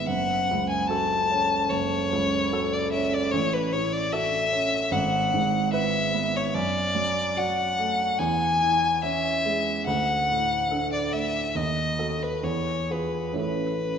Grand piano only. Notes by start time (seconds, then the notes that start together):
0.08 F#1
0.51 C#2
0.89 F#4 A4
1.31 C#4
1.70 F#1
2.13 C#2
2.53 F#4 A4
2.94 C#4
3.33 A1
3.74 A2
4.13 F#4 A4
4.52 C#4
4.91 G#1
5.34 G#2
5.73 E4 B4
6.14 B3
6.55 F#2
6.95 F#3
7.37 F#4 D5
7.79 A3
8.20 E2
8.62 E3
9.03 C#4 C#5
9.45 G#3
9.87 D2
10.31 A2
10.71 D4 A4
11.13 A3
11.55 D#2
11.99 F#4 A4
12.43 E2
12.90 F4 G#4
13.33 A1 C#4 E4 A4